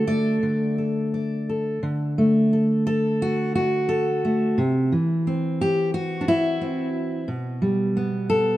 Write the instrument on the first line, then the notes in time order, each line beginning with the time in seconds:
steel-string acoustic guitar
Already playing: D3 A4
0.07 A3 D5
0.43 D3
0.78 A4
1.14 D5
1.49 A4
1.83 D3
2.18 A3
2.53 A4
2.87 A4
3.22 F#4
3.55 F#4
3.89 A4
4.25 A3
4.58 C3
4.92 E3
5.27 C4
5.61 G4
5.94 F#4
6.21 D4
6.28 E4
6.61 C4
7.28 B2
7.62 G3
7.97 B3
8.30 A4